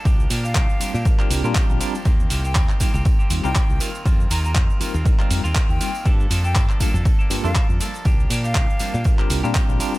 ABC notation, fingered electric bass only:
X:1
M:4/4
L:1/16
Q:"Swing 16ths" 1/4=120
K:Cdor
V:1 name="Fingered electric bass" clef=bass
C,,2 B,,2 C,, z2 B,, z2 C,, B,, z B,,, z2 | E,,2 C,,2 E,, z2 C,, z2 E,, C,, z C,, z2 | F,,2 E,,2 F,, z2 E,, z2 F,, E,, z E,, z2 | G,,2 F,,2 G,, z2 F,, z2 G,, F,, z F,, z2 |
C,,2 B,,2 C,, z2 B,, z2 C,, B,, z B,,, z2 |]